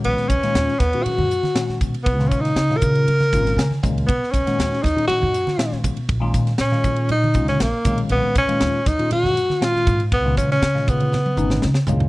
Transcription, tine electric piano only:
X:1
M:4/4
L:1/16
Q:1/4=119
K:Blyd
V:1 name="Tine electric piano" clef=bass
[A,,D,G,CF]2 z [A,,D,G,CE]2 z2 [A,,D,G,CF]3 z2 [A,,D,G,CF]3 z | z [A,,D,G,CE]2 z2 [A,,D,G,CE]3 z2 [A,,D,G,CE]2 g2 [A,,D,G,CEe]2 | z3 [A,,D,G,CF]2 z2 [A,,D,G,CD]3 z2 [A,,D,G,CE]3 z | z [A,,D,G,CE]2 z2 [A,,D,G,CE]3 z2 [A,,D,G,CE]2 z2 [A,,D,G,CE]2- |
[A,,D,G,CE]2 z [A,,D,G,CE]2 z2 [A,,D,G,CE]3 z2 [A,,D,G,CE]3 z | z [A,,D,G,CE]2 z2 [A,,D,G,CE]3 z2 [A,,D,G,CD]2 z2 [A,,D,G,CE]2 |]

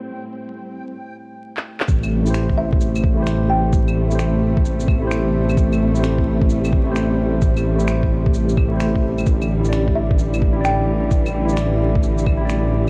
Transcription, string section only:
X:1
M:4/4
L:1/8
Q:"Swing 16ths" 1/4=130
K:Am
V:1 name="String section" clef=bass
[A,,G,C]4 z4 | [C,G,A,]8- | [C,G,A,]8- | [C,G,A,]8- |
[C,G,A,]8 | [D,E,]8- | [D,E,]8 |]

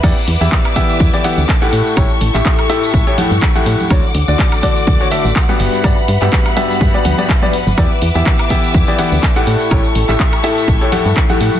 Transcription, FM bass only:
X:1
M:4/4
L:1/16
Q:"Swing 16ths" 1/4=124
K:Amix
V:1 name="FM bass" clef=bass
E,, z E,, E,, z4 E,, z2 D,, z2 A,, z | A,,, z A,,, A,,, z4 A,,, z2 G,, z2 A,, z | D,, z D,, D,, z4 D,, z2 A,,, z2 G,,, z | G,, z G,, G,, z4 G,, z D,, z4 G,,, |
E,, z E,, E,, z4 E,, z2 D,, z2 A,, z | A,,, z A,,, A,,, z4 A,,, z2 G,, z2 A,, z |]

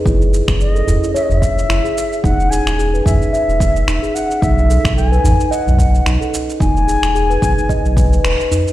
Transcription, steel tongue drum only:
X:1
M:4/4
L:1/16
Q:"Swing 16ths" 1/4=110
K:E
V:1 name="Steel tongue drum"
E2 G2 G A E E c4 E G3 | D2 G2 G B D D e4 D G3 | D2 A2 A B D D d4 D A3 | D2 G2 G B D D d z B B B B D z |]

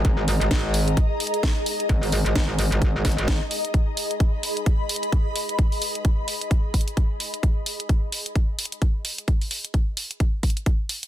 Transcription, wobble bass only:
X:1
M:4/4
L:1/16
Q:"Swing 16ths" 1/4=130
K:G#m
V:1 name="Wobble bass" clef=bass
G,,,3 G,,, G,,,4 z8 | G,,,3 G,,, G,,,3 G,,,3 G,,, G,,,2 z3 | z16 | z16 |
z16 | z16 |]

